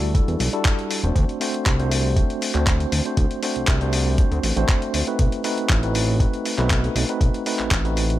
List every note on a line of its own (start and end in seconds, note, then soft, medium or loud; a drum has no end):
0.00 0.21 D2 medium
0.00 0.12 G3 medium
0.00 0.12 D4 medium
0.00 0.12 E4 medium
0.00 0.12 F#4 medium
0.00 0.12 A4 medium
0.14 0.50 G3 medium
0.14 0.50 D4 medium
0.14 0.50 E4 medium
0.14 0.50 F#4 medium
0.14 0.50 A4 medium
0.14 kick loud
0.14 closed hi-hat medium
0.28 0.36 E2 medium
0.28 closed hi-hat soft
0.40 0.49 B1 loud
0.40 open hi-hat loud
0.53 1.00 G3 medium
0.53 1.00 D4 medium
0.53 1.01 E4 medium
0.53 1.01 F#4 medium
0.53 1.01 A4 loud
0.53 closed hi-hat soft
0.65 kick loud
0.65 clap loud
0.65 closed hi-hat medium
0.79 closed hi-hat soft
0.91 open hi-hat loud
1.03 1.12 E1 loud
1.03 1.38 A3 medium
1.03 1.38 C4 medium
1.03 1.38 D4 medium
1.03 1.38 F#4 medium
1.03 1.38 C5 medium
1.03 closed hi-hat soft
1.16 1.25 D2 medium
1.16 kick loud
1.16 closed hi-hat medium
1.29 closed hi-hat soft
1.40 1.76 A3 medium
1.40 1.76 C4 medium
1.40 1.76 D4 medium
1.40 1.76 F#4 medium
1.40 1.76 C5 medium
1.40 open hi-hat loud
1.54 closed hi-hat soft
1.66 2.23 C2 medium
1.66 kick loud
1.66 clap loud
1.66 closed hi-hat medium
1.79 2.13 A3 medium
1.79 2.14 C4 medium
1.79 2.14 D4 medium
1.79 2.14 F#4 medium
1.79 2.14 C5 medium
1.79 closed hi-hat soft
1.91 open hi-hat loud
2.16 2.52 A3 medium
2.16 2.52 C4 medium
2.16 2.52 D4 medium
2.16 2.52 F#4 medium
2.16 2.52 C5 medium
2.16 kick loud
2.16 closed hi-hat medium
2.30 closed hi-hat soft
2.42 open hi-hat loud
2.54 2.86 D2 medium
2.54 3.02 A3 medium
2.54 3.02 C4 medium
2.54 3.02 D4 medium
2.54 3.02 F#4 medium
2.54 3.02 C5 medium
2.54 clap soft
2.54 closed hi-hat soft
2.67 kick loud
2.67 clap loud
2.67 closed hi-hat medium
2.80 closed hi-hat soft
2.92 3.01 D2 loud
2.92 open hi-hat loud
3.05 3.40 A3 medium
3.05 3.40 C4 medium
3.05 3.40 D4 medium
3.05 3.40 F#4 medium
3.05 3.40 C5 medium
3.05 closed hi-hat soft
3.17 3.26 D2 medium
3.17 kick loud
3.17 closed hi-hat medium
3.31 closed hi-hat soft
3.43 3.78 A3 medium
3.43 3.78 C4 medium
3.43 3.78 D4 medium
3.43 3.78 F#4 medium
3.43 3.78 C5 medium
3.43 open hi-hat medium
3.56 3.66 C2 soft
3.56 closed hi-hat soft
3.67 4.25 C2 medium
3.67 kick loud
3.67 clap loud
3.67 closed hi-hat medium
3.81 4.15 A3 medium
3.81 4.16 C4 medium
3.81 4.16 D4 medium
3.81 4.16 F#4 medium
3.81 4.16 C5 medium
3.81 closed hi-hat soft
3.93 open hi-hat loud
4.18 4.53 A3 medium
4.18 4.53 C4 medium
4.18 4.54 D4 medium
4.18 4.54 F#4 medium
4.18 4.54 C5 medium
4.18 kick loud
4.18 closed hi-hat medium
4.31 4.40 D2 loud
4.31 closed hi-hat soft
4.43 4.53 A1 medium
4.43 open hi-hat loud
4.56 4.65 A1 loud
4.56 5.04 A3 medium
4.56 5.04 C4 medium
4.56 5.04 D4 medium
4.56 5.04 F#4 medium
4.56 5.04 C5 loud
4.56 closed hi-hat soft
4.68 kick loud
4.68 clap loud
4.68 closed hi-hat medium
4.82 closed hi-hat soft
4.94 5.03 D2 medium
4.94 open hi-hat loud
5.07 5.41 A3 medium
5.07 5.41 C4 medium
5.07 5.42 D#4 medium
5.07 5.42 F#4 medium
5.07 5.42 B4 medium
5.07 closed hi-hat soft
5.19 5.28 B1 loud
5.19 kick loud
5.19 closed hi-hat medium
5.32 closed hi-hat soft
5.44 5.79 A3 medium
5.44 5.79 C4 medium
5.44 5.80 D#4 medium
5.44 5.80 F#4 medium
5.44 5.80 B4 medium
5.44 open hi-hat medium
5.58 closed hi-hat soft
5.69 6.27 A1 medium
5.69 kick loud
5.69 clap loud
5.69 closed hi-hat medium
5.82 6.17 A3 medium
5.82 6.17 C4 medium
5.82 6.17 D#4 medium
5.82 6.17 F#4 medium
5.82 6.17 B4 medium
5.82 closed hi-hat soft
5.95 open hi-hat loud
6.20 6.55 A3 medium
6.20 6.55 C4 medium
6.20 6.55 D#4 medium
6.20 6.56 F#4 medium
6.20 6.56 B4 medium
6.20 kick loud
6.20 closed hi-hat medium
6.33 closed hi-hat soft
6.46 open hi-hat loud
6.58 6.90 B1 medium
6.58 7.05 A3 medium
6.58 7.06 C4 medium
6.58 7.06 D#4 medium
6.58 7.06 F#4 medium
6.58 7.06 B4 loud
6.58 clap soft
6.58 closed hi-hat soft
6.70 kick loud
6.70 clap loud
6.70 closed hi-hat medium
6.84 closed hi-hat soft
6.96 7.05 B1 medium
6.96 open hi-hat loud
7.09 7.43 A3 medium
7.09 7.43 C4 medium
7.09 7.43 D#4 medium
7.09 7.43 F#4 medium
7.09 7.44 B4 medium
7.09 closed hi-hat soft
7.21 7.30 B1 loud
7.21 kick loud
7.21 closed hi-hat medium
7.34 closed hi-hat soft
7.46 7.81 A3 medium
7.46 7.81 C4 medium
7.46 7.81 D#4 medium
7.46 7.82 F#4 medium
7.46 7.82 B4 medium
7.46 open hi-hat medium
7.59 7.69 A1 soft
7.59 clap soft
7.59 closed hi-hat soft
7.71 8.19 A1 medium
7.71 kick loud
7.71 clap loud
7.71 closed hi-hat medium
7.84 8.19 A3 medium
7.84 8.19 C4 medium
7.84 8.19 D#4 medium
7.84 8.19 F#4 medium
7.84 8.19 B4 medium
7.84 closed hi-hat soft
7.97 open hi-hat medium
8.10 closed hi-hat soft